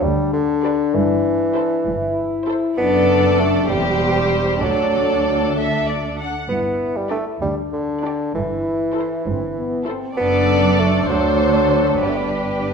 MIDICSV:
0, 0, Header, 1, 8, 480
1, 0, Start_track
1, 0, Key_signature, 1, "major"
1, 0, Tempo, 615385
1, 734, Time_signature, 6, 3, 24, 8
1, 8413, Tempo, 628931
1, 9901, End_track
2, 0, Start_track
2, 0, Title_t, "Violin section"
2, 0, Program_c, 0, 48
2, 499, Note_on_c, 0, 74, 54
2, 675, Note_off_c, 0, 74, 0
2, 1210, Note_on_c, 0, 72, 55
2, 1389, Note_off_c, 0, 72, 0
2, 1922, Note_on_c, 0, 72, 65
2, 2101, Note_off_c, 0, 72, 0
2, 2164, Note_on_c, 0, 74, 59
2, 2846, Note_off_c, 0, 74, 0
2, 2876, Note_on_c, 0, 72, 57
2, 3600, Note_on_c, 0, 74, 52
2, 3601, Note_off_c, 0, 72, 0
2, 4269, Note_off_c, 0, 74, 0
2, 4333, Note_on_c, 0, 76, 58
2, 4560, Note_off_c, 0, 76, 0
2, 4578, Note_on_c, 0, 74, 46
2, 4821, Note_off_c, 0, 74, 0
2, 4823, Note_on_c, 0, 78, 50
2, 5059, Note_off_c, 0, 78, 0
2, 5545, Note_on_c, 0, 74, 42
2, 5724, Note_off_c, 0, 74, 0
2, 6266, Note_on_c, 0, 74, 48
2, 6444, Note_off_c, 0, 74, 0
2, 6988, Note_on_c, 0, 72, 51
2, 7160, Note_off_c, 0, 72, 0
2, 7691, Note_on_c, 0, 72, 57
2, 7869, Note_off_c, 0, 72, 0
2, 7931, Note_on_c, 0, 74, 61
2, 8616, Note_off_c, 0, 74, 0
2, 8642, Note_on_c, 0, 72, 56
2, 9356, Note_on_c, 0, 71, 40
2, 9363, Note_off_c, 0, 72, 0
2, 9901, Note_off_c, 0, 71, 0
2, 9901, End_track
3, 0, Start_track
3, 0, Title_t, "Violin section"
3, 0, Program_c, 1, 48
3, 503, Note_on_c, 1, 71, 53
3, 677, Note_off_c, 1, 71, 0
3, 1216, Note_on_c, 1, 69, 55
3, 1392, Note_off_c, 1, 69, 0
3, 1930, Note_on_c, 1, 69, 60
3, 2105, Note_off_c, 1, 69, 0
3, 2168, Note_on_c, 1, 69, 56
3, 2848, Note_off_c, 1, 69, 0
3, 2877, Note_on_c, 1, 67, 61
3, 3598, Note_on_c, 1, 69, 50
3, 3602, Note_off_c, 1, 67, 0
3, 4903, Note_off_c, 1, 69, 0
3, 5543, Note_on_c, 1, 67, 42
3, 5723, Note_off_c, 1, 67, 0
3, 6269, Note_on_c, 1, 67, 46
3, 6446, Note_off_c, 1, 67, 0
3, 6976, Note_on_c, 1, 69, 48
3, 7154, Note_off_c, 1, 69, 0
3, 7688, Note_on_c, 1, 69, 56
3, 7867, Note_off_c, 1, 69, 0
3, 7933, Note_on_c, 1, 69, 59
3, 8617, Note_off_c, 1, 69, 0
3, 8642, Note_on_c, 1, 69, 54
3, 9348, Note_off_c, 1, 69, 0
3, 9365, Note_on_c, 1, 67, 40
3, 9901, Note_off_c, 1, 67, 0
3, 9901, End_track
4, 0, Start_track
4, 0, Title_t, "French horn section"
4, 0, Program_c, 2, 60
4, 0, Note_on_c, 2, 62, 67
4, 1423, Note_off_c, 2, 62, 0
4, 1450, Note_on_c, 2, 64, 71
4, 2149, Note_off_c, 2, 64, 0
4, 2176, Note_on_c, 2, 62, 68
4, 2883, Note_off_c, 2, 62, 0
4, 2890, Note_on_c, 2, 60, 57
4, 2996, Note_off_c, 2, 60, 0
4, 3134, Note_on_c, 2, 59, 46
4, 3239, Note_off_c, 2, 59, 0
4, 3365, Note_on_c, 2, 60, 46
4, 3473, Note_off_c, 2, 60, 0
4, 3617, Note_on_c, 2, 62, 54
4, 4684, Note_off_c, 2, 62, 0
4, 5072, Note_on_c, 2, 64, 54
4, 5759, Note_off_c, 2, 64, 0
4, 5785, Note_on_c, 2, 62, 45
4, 6504, Note_off_c, 2, 62, 0
4, 6508, Note_on_c, 2, 64, 56
4, 7203, Note_off_c, 2, 64, 0
4, 7221, Note_on_c, 2, 60, 53
4, 7327, Note_off_c, 2, 60, 0
4, 7461, Note_on_c, 2, 59, 52
4, 7690, Note_off_c, 2, 59, 0
4, 7698, Note_on_c, 2, 60, 52
4, 7929, Note_off_c, 2, 60, 0
4, 7950, Note_on_c, 2, 62, 69
4, 8642, Note_off_c, 2, 62, 0
4, 8662, Note_on_c, 2, 62, 66
4, 9359, Note_off_c, 2, 62, 0
4, 9383, Note_on_c, 2, 59, 41
4, 9901, Note_off_c, 2, 59, 0
4, 9901, End_track
5, 0, Start_track
5, 0, Title_t, "Viola section"
5, 0, Program_c, 3, 48
5, 502, Note_on_c, 3, 67, 54
5, 677, Note_off_c, 3, 67, 0
5, 1211, Note_on_c, 3, 64, 57
5, 1390, Note_off_c, 3, 64, 0
5, 1927, Note_on_c, 3, 64, 60
5, 2104, Note_off_c, 3, 64, 0
5, 2172, Note_on_c, 3, 62, 53
5, 2850, Note_off_c, 3, 62, 0
5, 2882, Note_on_c, 3, 67, 55
5, 3604, Note_off_c, 3, 67, 0
5, 3607, Note_on_c, 3, 62, 44
5, 4882, Note_off_c, 3, 62, 0
5, 5547, Note_on_c, 3, 62, 46
5, 5725, Note_off_c, 3, 62, 0
5, 6271, Note_on_c, 3, 62, 47
5, 6446, Note_off_c, 3, 62, 0
5, 6985, Note_on_c, 3, 64, 51
5, 7158, Note_off_c, 3, 64, 0
5, 7697, Note_on_c, 3, 64, 54
5, 7872, Note_off_c, 3, 64, 0
5, 7939, Note_on_c, 3, 62, 52
5, 8620, Note_off_c, 3, 62, 0
5, 8649, Note_on_c, 3, 62, 57
5, 9352, Note_off_c, 3, 62, 0
5, 9361, Note_on_c, 3, 62, 37
5, 9901, Note_off_c, 3, 62, 0
5, 9901, End_track
6, 0, Start_track
6, 0, Title_t, "Bassoon"
6, 0, Program_c, 4, 70
6, 21, Note_on_c, 4, 55, 70
6, 254, Note_off_c, 4, 55, 0
6, 258, Note_on_c, 4, 50, 72
6, 740, Note_on_c, 4, 52, 73
6, 752, Note_off_c, 4, 50, 0
6, 1930, Note_off_c, 4, 52, 0
6, 2166, Note_on_c, 4, 59, 91
6, 2646, Note_on_c, 4, 57, 72
6, 2657, Note_off_c, 4, 59, 0
6, 2878, Note_off_c, 4, 57, 0
6, 2882, Note_on_c, 4, 55, 78
6, 3604, Note_on_c, 4, 54, 62
6, 3616, Note_off_c, 4, 55, 0
6, 4334, Note_off_c, 4, 54, 0
6, 5060, Note_on_c, 4, 59, 61
6, 5432, Note_on_c, 4, 55, 57
6, 5444, Note_off_c, 4, 59, 0
6, 5543, Note_off_c, 4, 55, 0
6, 5548, Note_on_c, 4, 57, 56
6, 5656, Note_off_c, 4, 57, 0
6, 5787, Note_on_c, 4, 55, 56
6, 5894, Note_off_c, 4, 55, 0
6, 6031, Note_on_c, 4, 50, 53
6, 6498, Note_off_c, 4, 50, 0
6, 6513, Note_on_c, 4, 52, 63
6, 7671, Note_off_c, 4, 52, 0
6, 7933, Note_on_c, 4, 59, 85
6, 8415, Note_on_c, 4, 57, 68
6, 8426, Note_off_c, 4, 59, 0
6, 8646, Note_off_c, 4, 57, 0
6, 8650, Note_on_c, 4, 54, 73
6, 9369, Note_on_c, 4, 55, 44
6, 9380, Note_off_c, 4, 54, 0
6, 9417, Note_on_c, 4, 57, 39
6, 9428, Note_off_c, 4, 55, 0
6, 9473, Note_on_c, 4, 55, 48
6, 9485, Note_off_c, 4, 57, 0
6, 9901, Note_off_c, 4, 55, 0
6, 9901, End_track
7, 0, Start_track
7, 0, Title_t, "Cello section"
7, 0, Program_c, 5, 48
7, 20, Note_on_c, 5, 38, 60
7, 599, Note_off_c, 5, 38, 0
7, 741, Note_on_c, 5, 43, 65
7, 1317, Note_off_c, 5, 43, 0
7, 1458, Note_on_c, 5, 43, 64
7, 2029, Note_off_c, 5, 43, 0
7, 2167, Note_on_c, 5, 42, 63
7, 2848, Note_off_c, 5, 42, 0
7, 2883, Note_on_c, 5, 40, 59
7, 3605, Note_off_c, 5, 40, 0
7, 3607, Note_on_c, 5, 38, 53
7, 4908, Note_off_c, 5, 38, 0
7, 5065, Note_on_c, 5, 43, 53
7, 5648, Note_off_c, 5, 43, 0
7, 5793, Note_on_c, 5, 38, 52
7, 6370, Note_off_c, 5, 38, 0
7, 6511, Note_on_c, 5, 43, 61
7, 7082, Note_off_c, 5, 43, 0
7, 7218, Note_on_c, 5, 43, 64
7, 7792, Note_off_c, 5, 43, 0
7, 7934, Note_on_c, 5, 42, 63
7, 8618, Note_off_c, 5, 42, 0
7, 8649, Note_on_c, 5, 38, 58
7, 9366, Note_off_c, 5, 38, 0
7, 9367, Note_on_c, 5, 43, 42
7, 9901, Note_off_c, 5, 43, 0
7, 9901, End_track
8, 0, Start_track
8, 0, Title_t, "Double bass section"
8, 0, Program_c, 6, 48
8, 11, Note_on_c, 6, 38, 63
8, 594, Note_off_c, 6, 38, 0
8, 728, Note_on_c, 6, 31, 65
8, 1310, Note_off_c, 6, 31, 0
8, 1450, Note_on_c, 6, 31, 66
8, 2025, Note_off_c, 6, 31, 0
8, 2163, Note_on_c, 6, 30, 60
8, 2846, Note_off_c, 6, 30, 0
8, 2871, Note_on_c, 6, 28, 60
8, 3598, Note_on_c, 6, 38, 52
8, 3599, Note_off_c, 6, 28, 0
8, 4903, Note_off_c, 6, 38, 0
8, 5057, Note_on_c, 6, 31, 53
8, 5644, Note_off_c, 6, 31, 0
8, 5784, Note_on_c, 6, 38, 50
8, 6365, Note_off_c, 6, 38, 0
8, 6507, Note_on_c, 6, 31, 59
8, 7080, Note_off_c, 6, 31, 0
8, 7216, Note_on_c, 6, 31, 57
8, 7791, Note_off_c, 6, 31, 0
8, 7924, Note_on_c, 6, 30, 59
8, 8613, Note_off_c, 6, 30, 0
8, 8646, Note_on_c, 6, 38, 54
8, 9365, Note_off_c, 6, 38, 0
8, 9365, Note_on_c, 6, 31, 41
8, 9901, Note_off_c, 6, 31, 0
8, 9901, End_track
0, 0, End_of_file